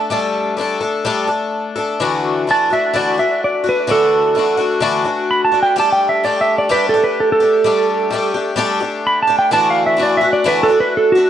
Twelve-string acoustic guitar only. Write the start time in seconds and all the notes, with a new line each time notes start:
Already playing: D4 A4
0.10 G3 A3 D4 A4
0.57 G3 A3 D4
0.61 A4
0.81 A3 D4 A4
1.05 G3 A3 D4 A4
1.27 A3 D4 A4
1.76 A3 D4 A4
2.00 D3 E3 A3 D4 F#4
2.47 E3 A3 D4 F#4
2.70 A3 D4 F#4
2.93 D3 E3 A3 D4 F#4
3.18 A3 D4 F#4
3.64 A3 D4 F#4
3.87 D3 E3 A3 D4 F#4
4.35 E3 A3 D4
4.39 F#4
4.57 A3 D4 F#4
4.80 D3 E3 A3 D4 F#4
5.05 A3 D4 F#4
5.52 A3 D4 F#4
5.76 G3 A3 D4 G4
6.24 G3 A3 D4 G4
6.69 G3 A3 D4 G4
6.94 A3 D4 G4
7.40 A3 D4 G4
7.64 G3 A3 D4 G4
8.11 G3 A3 D4 G4
8.34 A3 D4 G4
8.56 G3 A3 D4 G4
8.80 A3 D4 G4
9.27 A3 D4 G4
9.51 D3 E3 A3 D4 F#4
9.97 E3 A3 D4 F#4
10.21 A3 D4 F#4
10.44 D3 E3 A3 D4 F#4
10.68 A3 D4 F#4
11.15 A3 D4 F#4